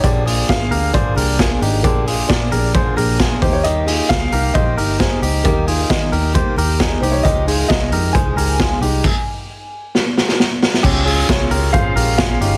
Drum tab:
CC |----------------|----------------|----------------|----------------|
HH |x-o-x-o-x-o-x-o-|x-o-x-o-x-o-x-o-|x-o-x-o-x-o-x-o-|x-o-x-o-x-o-x-o-|
SD |----o-------o---|----o-------o---|----o-------o---|----o-------o---|
BD |o---o---o---o---|o---o---o---o-o-|----o---o---o---|o---o---o---o---|

CC |----------------|x---------------|x---------------|
HH |x-o-x-o-x-o-x-o-|----------------|--o-x-o-x-o-x-o-|
SD |----o-------o---|--------o-ooo-oo|----o-------o---|
BD |o---o---o---o---|o---------------|o---o---o---o---|